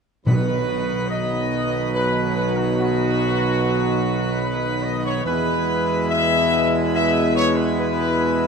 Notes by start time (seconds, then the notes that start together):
0.26 B1 B2 D#3 F#3 B3 D#4 B4
1.08 D#5
1.94 B4
2.35 B4
2.57 F#4
2.77 F#4
4.43 B4
4.83 D#5
5.05 C#5
5.24 E2 B2 E3 G#3 B3 E4 B4
6.10 E5
6.95 E5
7.36 C#5
7.56 B4
7.78 B4